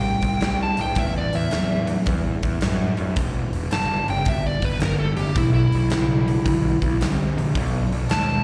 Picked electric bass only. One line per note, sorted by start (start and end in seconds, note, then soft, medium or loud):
0.00 0.15 C2 medium
0.22 0.37 C2 medium
0.42 0.70 C2 medium
0.80 0.93 C2 medium
0.96 1.24 E2 medium
1.35 1.48 E2 medium
1.53 1.95 E2 medium
2.07 2.35 E2 medium
2.43 2.58 E2 medium
2.63 2.91 F#2 medium
3.00 3.13 F#2 medium
3.16 3.44 E1 medium
3.54 3.68 E1 medium
3.72 4.00 G1 medium
4.09 4.23 G1 medium
4.27 4.54 G1 medium
4.62 4.76 G1 medium
4.82 5.10 G1 medium
5.18 5.32 G1 medium
5.36 5.64 B1 medium
5.75 5.88 B1 medium
5.93 6.34 B1 medium
6.46 6.73 B1 medium
6.82 6.96 B1 medium
7.02 7.29 C2 medium
7.39 7.52 A#1 medium
7.56 7.83 B1 medium
7.92 8.06 B1 medium
8.10 8.37 D#2 medium